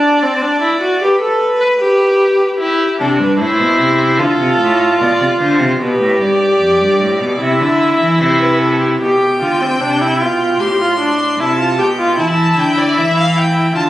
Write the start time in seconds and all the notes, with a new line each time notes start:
Already playing: D4 D5
0.23 C4
0.42 D4
0.62 E4
0.81 F#4
1.02 G4 B4
1.22 A4
1.60 B4
1.79 G4
2.60 E4 G4
3.00 C3 D4 A4
3.19 G2 B4
3.39 A2 E4 C5
3.59 B2
3.79 C3
4.18 D3 F4 A4
4.39 C3
4.58 A2
5.00 B2 D5
5.20 C3
5.39 D3 C5
5.60 C3
5.79 B2 G4 B4
6.00 A2
6.20 G2 D5
6.60 F2
6.80 G2
7.00 A2
7.20 B2
7.39 C3 E4 E5
7.60 D3
8.00 E3
8.21 C3 C5
8.41 B4
8.60 A4
8.80 G4
9.01 B2 G4 G5
9.41 D3 F4
9.62 C4
9.81 C3 D4
10.01 E4
10.21 B2 F4
10.60 A2 G4 C6
10.81 F4
11.00 D4
11.39 C3 E4 A5
11.59 F4
11.78 B2 G4 G5
11.99 F4
12.18 E3 E4 A5
12.57 D3 G5
12.78 D5
12.96 E3 E5
13.18 F5
13.38 G5
13.75 D3 F4 A5